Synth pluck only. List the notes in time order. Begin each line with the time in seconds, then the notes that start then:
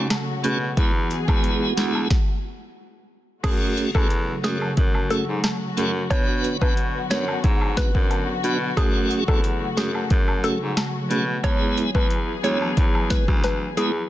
3.44 G#4
3.95 A4
4.44 G#4
5.11 A4
6.11 C#5
6.62 B4
7.11 C#5
7.77 B4
8.77 G#4
9.28 A4
9.77 G#4
10.44 A4
11.44 C#5
11.95 B4
12.44 C#5
13.11 B4
13.44 B4
13.77 G#4